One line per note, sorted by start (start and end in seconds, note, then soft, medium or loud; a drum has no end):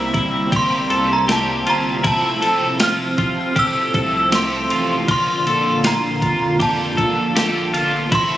0.00 0.16 C2 loud
0.00 5.04 C3 medium
0.00 0.50 G3 soft
0.00 2.01 G3 medium
0.00 2.01 A#3 medium
0.00 0.53 C4 soft
0.00 5.04 C4 medium
0.00 0.12 E4 medium
0.00 0.53 G4 soft
0.00 0.51 A#4 soft
0.00 0.11 A#5 medium
0.14 0.86 G1 medium
0.14 0.52 E4 medium
0.14 kick medium
0.14 ride soft
0.51 1.25 G3 medium
0.51 1.28 C4 medium
0.51 0.90 G4 medium
0.51 kick loud
0.51 ride medium
0.56 1.30 G4 medium
0.56 1.31 A#4 medium
0.56 1.07 C6 medium
0.90 1.62 C2 loud
0.90 1.28 A4 medium
0.90 ride soft
1.13 1.31 A#5 medium
1.26 2.03 G3 medium
1.26 2.04 C4 medium
1.26 1.66 G4 medium
1.26 snare loud
1.26 ride medium
1.26 tambourine medium
1.31 2.06 G4 medium
1.31 2.06 A#4 medium
1.31 1.69 A5 medium
1.66 2.02 G1 loud
1.66 2.03 F4 medium
1.66 2.03 A#5 medium
1.66 ride soft
2.03 2.58 F1 loud
2.03 2.42 F3 medium
2.03 5.05 F3 medium
2.03 2.42 A3 medium
2.03 2.43 C4 medium
2.03 2.41 E4 medium
2.03 2.42 E4 medium
2.03 kick loud
2.03 ride medium
2.07 2.39 A4 loud
2.07 2.84 A5 loud
2.40 3.57 E4 soft
2.40 3.60 A4 medium
2.40 2.80 A4 medium
2.40 ride soft
2.46 3.55 C4 soft
2.61 3.15 F1 loud
2.80 3.17 F4 medium
2.80 3.60 F6 loud
2.80 snare loud
2.80 ride medium
2.80 tambourine medium
3.18 3.90 F1 loud
3.18 3.55 F4 medium
3.18 kick medium
3.18 ride soft
3.54 4.30 A3 medium
3.54 4.32 C4 medium
3.54 3.94 G4 loud
3.54 kick loud
3.54 ride medium
3.58 4.33 E4 medium
3.58 4.36 A4 medium
3.58 4.36 E6 loud
3.94 4.66 C2 medium
3.94 4.32 A4 medium
3.94 kick medium
3.94 ride soft
4.30 5.08 A3 medium
4.30 5.08 C4 medium
4.30 4.70 G4 medium
4.30 snare loud
4.30 ride medium
4.30 tambourine medium
4.35 5.09 E4 medium
4.35 5.12 A4 medium
4.35 5.10 C6 medium
4.70 5.06 A1 loud
4.70 5.07 F4 medium
4.70 ride soft
5.05 6.18 A#1 medium
5.05 6.58 A#2 medium
5.05 6.60 D3 medium
5.05 8.08 D3 medium
5.05 8.09 A#3 medium
5.05 8.09 F4 medium
5.05 kick loud
5.09 6.58 A#3 medium
5.09 6.60 D4 medium
5.09 5.46 F4 loud
5.09 6.63 F4 medium
5.09 5.88 C6 loud
5.09 ride medium
5.47 5.84 A4 medium
5.47 ride soft
5.84 6.21 F4 medium
5.84 6.63 A#5 medium
5.84 snare loud
5.84 ride medium
5.84 tambourine medium
6.22 6.94 F2 medium
6.22 6.59 F4 medium
6.22 kick medium
6.22 ride soft
6.59 7.33 A#3 medium
6.59 7.35 D4 medium
6.59 6.97 G4 medium
6.59 7.71 A5 medium
6.59 kick loud
6.59 ride medium
6.63 7.38 F4 medium
6.63 7.40 A4 medium
6.97 7.70 A#1 loud
6.97 7.35 A4 medium
6.97 kick medium
6.97 ride soft
7.34 8.11 A#3 medium
7.34 8.12 D4 medium
7.34 7.73 G4 medium
7.34 snare loud
7.34 ride medium
7.34 tambourine medium
7.38 8.16 F4 medium
7.38 8.18 A4 medium
7.74 8.10 G1 loud
7.74 8.11 F4 medium
7.74 ride soft
8.09 8.37 F1 loud
8.09 8.37 C3 medium
8.09 8.37 F3 medium
8.09 8.37 A3 medium
8.09 8.37 E4 medium
8.09 8.37 E5 medium
8.09 kick loud
8.09 ride medium
8.14 8.37 C4 medium
8.14 8.37 E4 medium
8.14 8.37 C6 medium
8.19 8.37 A4 medium